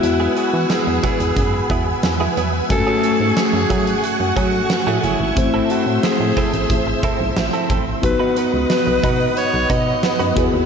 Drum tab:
HH |x-x-x-xxx-x-x-x-|x-x-x-xxx-x-x-x-|x-x-x-xxx-x-xxx-|x-x-x-x-x-x-xxx-|
SD |----o-------o---|----o-------o---|----o-------o---|----o-------o---|
BD |------o-o-o-----|o-----o---o-----|o-----o-o-o---o-|o-----o---o---o-|